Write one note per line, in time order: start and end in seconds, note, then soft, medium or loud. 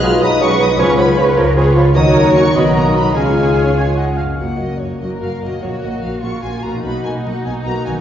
0.00 0.15 B1 medium
0.00 0.81 B2 medium
0.00 0.60 F#3 medium
0.00 0.11 F#3 medium
0.00 0.40 G#3 medium
0.00 0.40 D#4 medium
0.00 0.22 F4 loud
0.00 0.40 F#4 medium
0.00 0.21 G#4 medium
0.00 0.40 B4 medium
0.00 0.40 D#5 medium
0.00 0.12 D#5 medium
0.00 0.09 B5 medium
0.04 0.23 F6 loud
0.21 0.73 B1 medium
0.21 0.31 F#3 medium
0.21 0.41 D#4 loud
0.21 1.35 B4 medium
0.21 1.37 B4 medium
0.21 0.30 D#5 medium
0.21 0.29 B5 medium
0.21 0.41 D#6 loud
0.41 0.50 F#3 medium
0.41 0.78 G#3 medium
0.41 0.60 C#4 medium
0.41 0.81 D#4 medium
0.41 0.79 F#4 medium
0.41 0.79 B4 medium
0.41 0.50 D#5 medium
0.41 0.79 D#5 medium
0.41 0.47 B5 medium
0.41 0.61 C#6 loud
0.60 0.69 F#3 medium
0.60 0.81 F#3 medium
0.60 0.68 D#4 medium
0.60 0.69 D#5 medium
0.60 0.67 B5 medium
0.60 0.80 D#6 loud
0.79 1.31 C#2 medium
0.79 1.98 C#3 medium
0.79 0.88 F3 medium
0.79 0.98 G#3 medium
0.79 0.98 C#4 loud
0.79 0.97 F4 medium
0.79 0.98 B4 medium
0.79 0.88 C#5 medium
0.79 0.98 C#5 medium
0.79 0.86 B5 medium
0.79 0.99 C#6 loud
0.98 1.08 F3 medium
0.98 1.76 G#3 medium
0.98 1.55 G#3 medium
0.98 1.18 B3 medium
0.98 1.55 F4 medium
0.98 1.56 B4 medium
0.98 1.07 C#5 medium
0.98 1.56 C#5 medium
0.98 1.18 B5 loud
0.98 1.05 B5 medium
1.17 1.27 F3 medium
1.17 1.56 C#4 medium
1.17 1.26 C#5 medium
1.17 1.24 B5 medium
1.37 1.90 C#2 medium
1.37 1.47 F3 medium
1.37 1.57 A#4 loud
1.37 1.98 B4 medium
1.37 1.46 C#5 medium
1.37 1.45 B5 medium
1.56 1.66 F3 medium
1.56 1.95 G#3 medium
1.56 2.14 C#4 medium
1.56 1.95 F4 medium
1.56 1.76 G#4 medium
1.56 1.95 B4 medium
1.56 1.66 C#5 medium
1.56 1.94 C#5 medium
1.56 1.64 B5 medium
1.76 1.85 F3 medium
1.76 1.98 G#3 medium
1.76 1.96 F4 medium
1.76 1.86 C#5 medium
1.76 1.84 B5 medium
1.95 2.52 D#2 medium
1.95 2.58 D#3 medium
1.95 2.52 F#3 medium
1.95 2.33 D#4 loud
1.95 2.55 F#4 medium
1.95 2.52 F#4 medium
1.95 2.51 A#4 medium
1.95 2.51 C#5 medium
1.95 2.57 C#5 medium
1.95 2.29 A#5 medium
1.95 2.33 D#6 loud
2.16 2.35 C#4 medium
2.36 2.56 C#4 medium
2.36 2.58 C#4 medium
2.36 2.95 F#4 medium
2.36 2.55 C#6 loud
2.55 3.15 B1 medium
2.55 3.18 B2 medium
2.55 3.15 F#3 medium
2.55 2.75 B3 medium
2.55 3.15 D#4 medium
2.55 3.15 F#4 medium
2.55 3.15 A#4 medium
2.55 3.15 D#5 medium
2.55 3.16 D#5 medium
2.55 3.15 A#5 medium
2.55 2.76 B5 medium
2.75 2.95 A#3 medium
2.75 3.18 A#3 medium
2.75 2.95 A#5 medium
2.95 3.16 B3 medium
2.95 3.18 D#4 medium
2.95 3.18 F#4 medium
2.95 3.15 B5 loud
3.15 4.18 C#2 medium
3.15 4.40 C#3 medium
3.15 4.16 G#3 medium
3.15 3.76 G#3 medium
3.15 4.18 C#4 medium
3.15 4.18 F4 medium
3.15 4.06 F4 medium
3.15 4.16 G#4 medium
3.15 4.18 C#5 medium
3.15 3.72 F5 medium
3.15 4.18 G#5 medium
3.15 3.75 G#5 medium
3.36 4.17 G#3 soft
3.57 3.96 F4 soft
3.77 6.86 C#5 soft
3.77 3.96 G#5 medium
3.77 3.87 G#5 medium
3.97 4.40 F4 soft
3.97 4.06 D#5 medium
3.97 4.19 F#5 medium
4.18 5.55 F#2 soft
4.18 4.40 G#3 soft
4.18 4.26 F5 medium
4.18 4.39 F5 medium
4.25 5.48 A#3 soft
4.30 5.52 C#4 soft
4.35 5.57 F#4 soft
4.35 4.59 F#5 medium
4.39 4.47 F#1 soft
4.39 4.47 F#2 soft
4.39 6.80 A#3 soft
4.39 4.59 A#3 soft
4.39 6.80 F#4 soft
4.39 4.59 F#4 soft
4.59 4.68 F#1 soft
4.59 4.68 F#2 soft
4.59 4.80 A#3 soft
4.59 4.79 F#4 soft
4.59 4.80 D#5 medium
4.79 4.89 F#1 soft
4.79 4.89 F#2 soft
4.79 5.00 A#3 soft
4.79 5.00 F#4 soft
4.79 5.01 C#5 medium
5.00 5.09 F#1 soft
5.00 5.10 F#2 soft
5.00 5.21 A#3 soft
5.00 5.21 F#4 soft
5.00 5.58 A#4 soft
5.00 5.09 D#5 medium
5.22 5.30 F#1 soft
5.22 5.30 F#2 soft
5.22 5.41 A#3 soft
5.22 5.41 F#4 soft
5.22 5.42 F5 medium
5.42 5.51 F#1 soft
5.42 5.50 F#2 soft
5.42 6.77 A#2 soft
5.42 5.61 A#3 soft
5.42 5.61 F#4 soft
5.42 5.63 D#5 medium
5.49 6.70 A#3 soft
5.54 6.82 C#4 soft
5.58 6.79 F#4 soft
5.58 6.22 F#4 medium
5.62 5.71 A#1 soft
5.62 5.70 A#2 soft
5.62 5.81 A#3 soft
5.62 5.82 F#4 soft
5.62 5.83 C#5 medium
5.82 5.91 A#1 soft
5.82 5.91 A#2 soft
5.82 6.01 A#3 soft
5.82 6.02 F#4 soft
5.82 6.03 D#5 medium
6.03 6.11 A#1 soft
6.03 6.11 A#2 soft
6.03 6.22 A#3 soft
6.03 6.22 F#4 soft
6.03 6.23 F5 medium
6.22 6.31 A#1 medium
6.22 6.31 A#2 medium
6.22 6.42 A#3 soft
6.22 6.84 F4 soft
6.22 6.42 F#4 soft
6.22 6.43 C#6 medium
6.43 6.52 A#1 soft
6.43 6.51 A#2 medium
6.43 6.63 A#3 soft
6.43 6.63 F#4 soft
6.43 6.63 G#5 medium
6.63 6.72 A#1 soft
6.63 6.72 A#2 soft
6.63 7.99 B2 soft
6.63 6.84 A#3 soft
6.63 6.84 F#4 soft
6.63 6.84 A#5 medium
6.71 8.01 A#3 soft
6.75 7.96 D#4 soft
6.80 8.01 F#4 soft
6.80 7.04 B5 medium
6.84 6.92 B1 medium
6.84 6.92 B2 soft
6.84 8.01 A#3 medium
6.84 7.04 A#3 soft
6.84 8.01 D#4 medium
6.84 8.01 F#4 medium
6.84 7.04 F#4 medium
7.04 7.13 B1 soft
7.04 7.13 B2 soft
7.04 7.25 A#3 soft
7.04 7.25 F#4 soft
7.04 7.12 G#5 medium
7.25 7.33 B1 medium
7.25 7.34 B2 soft
7.25 7.44 A#3 soft
7.25 7.45 F#4 soft
7.25 7.45 F#5 medium
7.45 7.53 B1 medium
7.45 7.54 B2 medium
7.45 7.65 A#3 soft
7.45 7.65 F#4 soft
7.45 7.53 G#5 medium
7.64 7.73 B1 medium
7.64 7.74 B2 medium
7.64 7.84 A#3 medium
7.64 7.84 F#4 soft
7.64 7.85 A#5 medium
7.85 7.94 B1 soft
7.85 7.94 B2 medium
7.85 8.01 D#3 soft
7.85 8.01 A#3 soft
7.85 8.01 F#4 soft
7.85 7.93 G#5 medium
7.93 8.01 B3 soft
7.97 8.01 D#4 soft